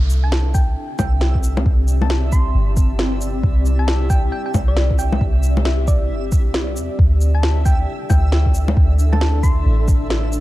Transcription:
Already playing: 808-style bass C2, ambient pad C4 D4 A4 E5, synth texture E4 E5
0.10 shaker
0.16 ambient pad G4
0.24 synth pluck A5
0.32 snare
0.49 ambient pad D5
0.54 synth pluck G5, kick, shaker
0.99 808-style bass C2, synth pluck G5, kick, low bongo, shaker
1.21 snare
1.35 kick
1.43 shaker
1.57 low bongo
1.66 808-style bass C2, kick
1.88 shaker
2.01 synth pluck A5, low bongo
2.10 snare
2.32 synth pluck C6, kick, shaker
2.55 808-style bass G1
2.77 kick, shaker
2.99 snare
3.21 shaker
3.43 808-style bass C2, kick
3.65 shaker
3.79 synth pluck A5
3.88 snare
4.10 synth pluck G5, kick, shaker
4.32 synth pluck G5
4.46 synth pluck G5
4.54 808-style bass C2, kick, low bongo, shaker
4.68 synth pluck D5
4.77 snare
4.90 kick
4.99 synth pluck G5, shaker
5.12 low bongo
5.21 808-style bass C2, kick
5.43 shaker
5.57 low bongo
5.65 synth pluck E5, snare
5.88 synth pluck D5, kick, shaker
6.10 808-style bass G1
6.32 808-style bass C2, kick, shaker
6.54 snare
6.77 808-style bass E2, shaker
6.99 808-style bass D2, ambient pad D4, kick
7.21 shaker
7.35 ambient pad A4, synth pluck A5
7.43 snare
7.65 synth pluck G5, kick, shaker
7.80 ambient pad D5
7.92 ambient pad E5
8.10 808-style bass D2, synth pluck G5, kick, low bongo, shaker
8.32 snare
8.46 kick
8.54 shaker
8.68 low bongo
8.77 808-style bass D2, kick
8.99 shaker
9.12 synth pluck A5, low bongo
9.21 snare
9.43 synth pluck C6, kick, shaker
9.66 808-style bass A1
9.88 kick, shaker
10.10 snare
10.32 shaker

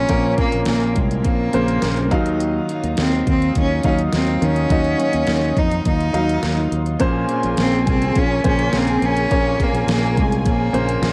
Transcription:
Already playing: grand piano C#3 A#3 G#4, cello C#4, analog synth pad A#4 F5 A#5 C6
0.09 fingered electric bass A#1, grand piano A#2 A#3 C4 A#4, steel-string acoustic guitar F3 C4 C#4 F4, kick, closed hi-hat
0.16 grand piano C#4
0.37 steel-string acoustic guitar F3 C4 C#4 F4, cello A#3, kick, closed hi-hat
0.52 fingered electric bass A#1, closed hi-hat
0.65 fingered electric bass A#1, steel-string acoustic guitar F3 C4 C#4 F4, cello A#3, snare, closed hi-hat
0.96 fingered electric bass C2, cello G#3, kick, closed hi-hat
1.11 closed hi-hat
1.24 fingered electric bass A#1, steel-string acoustic guitar F3 C4 C#4 F4, cello A#3, kick, closed hi-hat
1.53 fingered electric bass A#1, steel-string acoustic guitar A#2 F3 C4 C#4 F4, grand piano C#3 A#3 C5, closed hi-hat
1.68 closed hi-hat
1.82 fingered electric bass A#1, snare, closed hi-hat
1.97 steel-string acoustic guitar C4 C#4 F4, closed hi-hat
2.11 fingered electric bass D#2, steel-string acoustic guitar D#3 F#3 A#3 D#4 F4, grand piano D#3 F#3 D#4 F5, analog synth pad F#3 A#5 D#6, kick, closed hi-hat
2.26 closed hi-hat
2.40 closed hi-hat
2.68 steel-string acoustic guitar F#3 A#3 D#4 F4, closed hi-hat
2.84 fingered electric bass D#2, closed hi-hat
2.97 fingered electric bass D#2, steel-string acoustic guitar F#3 A#3 D#4 F4, snare, closed hi-hat
3.01 cello C4
3.27 fingered electric bass D#2, cello C4, kick, closed hi-hat
3.42 closed hi-hat
3.55 fingered electric bass D#2, steel-string acoustic guitar F#3 A#3 D#4 F4, kick, closed hi-hat
3.59 cello C#4
3.83 fingered electric bass D#2, steel-string acoustic guitar D#3 F#3 A#3 D#4 F4, grand piano F#3 D#4 F5, cello C#4, kick, closed hi-hat
3.99 closed hi-hat
4.13 fingered electric bass D#2, cello C4, snare, closed hi-hat
4.26 steel-string acoustic guitar A#3 D#4 F4, closed hi-hat
4.42 fingered electric bass D#2, grand piano D#3, cello C#4, analog synth pad C6, closed hi-hat
4.56 closed hi-hat
4.68 fingered electric bass D#2, steel-string acoustic guitar F#3 A#3 D#4 F4, grand piano D#4 F#4 D#5, kick, closed hi-hat
4.84 closed hi-hat
4.97 steel-string acoustic guitar F#3 A#3 D#4 F4, closed hi-hat
5.13 fingered electric bass D#2, closed hi-hat
5.26 fingered electric bass D#2, steel-string acoustic guitar F#3 A#3 D#4 F4, snare, closed hi-hat
5.57 fingered electric bass F2, cello D#4, kick, closed hi-hat
5.72 closed hi-hat
5.84 fingered electric bass D#2, steel-string acoustic guitar F#3 A#3 D#4 F4, cello D#4, kick, closed hi-hat
6.00 closed hi-hat
6.13 fingered electric bass D#2, steel-string acoustic guitar D#3 F#3 A#3 D#4 F4, grand piano F#3 D#4 F5, closed hi-hat
6.29 closed hi-hat
6.43 fingered electric bass D#2, snare, closed hi-hat
6.56 steel-string acoustic guitar A#3 D#4 F4
6.72 fingered electric bass D#2, closed hi-hat
6.86 closed hi-hat
6.99 fingered electric bass A#1, grand piano A#2 A#3 C#4 C5, steel-string acoustic guitar F3 C4 C#4 F4, violin section G#4 G#5, analog synth pad A#4 A#5, kick, closed hi-hat
7.28 steel-string acoustic guitar F3 C4 C#4 F4, closed hi-hat
7.43 fingered electric bass A#1, closed hi-hat
7.57 fingered electric bass A#1, steel-string acoustic guitar F3 C4 C#4 F4, cello C4, snare, closed hi-hat
7.87 fingered electric bass C2, cello C4, kick, closed hi-hat
8.02 closed hi-hat
8.15 fingered electric bass A#1, steel-string acoustic guitar F3 C4 C#4 F4, cello C#4, kick, closed hi-hat
8.44 fingered electric bass A#1, steel-string acoustic guitar A#2 F3 C4 C#4 F4, grand piano C#3 A#3 C5, cello C#4, kick, closed hi-hat
8.59 closed hi-hat
8.73 fingered electric bass A#1, cello C4, snare, closed hi-hat
8.88 steel-string acoustic guitar C4 C#4 F4, closed hi-hat
9.02 fingered electric bass A#1, cello C#4, closed hi-hat
9.17 closed hi-hat
9.30 fingered electric bass A#1, grand piano A#2 A#3 C#4 C#5, steel-string acoustic guitar F3 C4 C#4 F4, kick, closed hi-hat
9.58 steel-string acoustic guitar F3 C4 C#4 F4, kick, closed hi-hat
9.64 cello A#3
9.73 fingered electric bass A#1, closed hi-hat
9.87 fingered electric bass A#1, steel-string acoustic guitar F3 C4 C#4 F4, snare, closed hi-hat
9.93 cello A#3
10.17 fingered electric bass C2, cello G#3, kick, closed hi-hat
10.32 closed hi-hat
10.45 fingered electric bass A#1, steel-string acoustic guitar F3 C4 C#4 F4, kick, closed hi-hat
10.49 cello A#3
10.73 fingered electric bass A#1, steel-string acoustic guitar A#2 F3 C4 C#4 F4, grand piano C#3 A#3 C5, closed hi-hat
10.89 closed hi-hat
11.02 fingered electric bass A#1, snare, closed hi-hat

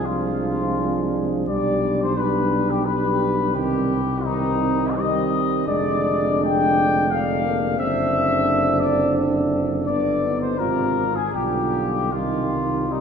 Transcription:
Already playing: tuba C2
0.05 trombone F3, euphonium G#3, french horn section D4, trumpet section F4
1.47 tuba B1, euphonium G3, trombone G3, french horn section D4, trumpet section D5
2.03 trumpet section C5
2.16 euphonium G3, trombone G3, french horn section D4, trumpet section B4
2.69 trumpet section G4
2.85 euphonium G3, trombone G3, french horn section D4, trumpet section B4
3.53 tuba C2, trombone D#3, euphonium G3, french horn section C4, trumpet section G4
4.23 trombone D#3, euphonium G3, french horn section C4, trumpet section D#4
4.96 trombone D#3, euphonium G3, french horn section C4, trumpet section D#5
5.66 tuba F1, trombone D3, euphonium G#3, french horn section D4, trumpet section D5
6.44 trumpet section G5
7.10 trombone D3, euphonium G#3, french horn section D4, trumpet section F5
7.45 euphonium A#3
7.78 tuba F#1, trombone D3, euphonium C4, french horn section D4, trumpet section E5
8.80 trumpet section D5
9.86 tuba G1, trombone D3, euphonium B3, french horn section D4, trumpet section D5
10.26 french horn section D#4
10.40 trumpet section C5
10.56 tuba G#1, trombone C3, euphonium C4, french horn section F4, trumpet section A#4
11.15 trumpet section G#4
11.32 tuba B1, trombone D3, euphonium G3, french horn section F4, trumpet section G4
12.11 tuba C2, trombone D#3, euphonium G3, french horn section D#4, trumpet section F4
12.88 euphonium G3, trombone G3, trumpet section D#4
12.93 french horn section D#4

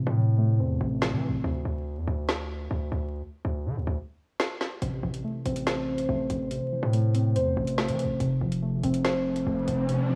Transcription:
Already playing: synth keys A2 C3 E3 A3 C4
0.07 808-style bass A2
0.17 synth keys E3
0.38 synth keys A3
0.60 808-style bass E2, synth keys C4
0.81 808-style bass A1
1.02 synth keys E3, snare
1.12 808-style bass E3
1.28 808-style bass A1
1.44 808-style bass D2
1.65 808-style bass D2
1.97 808-style bass E2
2.07 808-style bass D2
2.29 snare
2.71 808-style bass D2
2.92 808-style bass D2
3.45 808-style bass D2
3.66 808-style bass D3
3.76 808-style bass D2
3.87 808-style bass D2
4.40 snare
4.61 snare
4.82 808-style bass A1, synth keys C3, closed hi-hat
5.03 808-style bass A1, synth keys E3
5.14 closed hi-hat
5.24 synth keys A3
5.45 808-style bass A1, synth keys C4, closed hi-hat
5.56 closed hi-hat
5.67 synth keys C5, snare, closed hi-hat
5.98 closed hi-hat
6.09 808-style bass A1, synth keys A3
6.30 808-style bass A1, closed hi-hat
6.51 synth keys C3, closed hi-hat
6.72 synth keys E3
6.83 808-style bass A2
6.93 synth keys A3, closed hi-hat
7.14 synth keys C4, closed hi-hat
7.35 808-style bass E2, synth keys C5, closed hi-hat
7.57 808-style bass A1
7.67 closed hi-hat
7.78 synth keys A3, snare
7.88 808-style bass E3, closed hi-hat
7.99 closed hi-hat
8.04 808-style bass A1
8.20 808-style bass F1, synth keys C3, closed hi-hat, riser
8.41 808-style bass F1, synth keys F3
8.52 closed hi-hat
8.62 synth keys A3
8.73 808-style bass G1
8.83 808-style bass F1, synth keys C4, closed hi-hat
8.94 closed hi-hat
9.05 synth keys C5, snare, closed hi-hat
9.36 closed hi-hat
9.47 808-style bass F1, synth keys A3
9.68 808-style bass F1, closed hi-hat
9.89 synth keys C3, closed hi-hat
10.10 synth keys F3

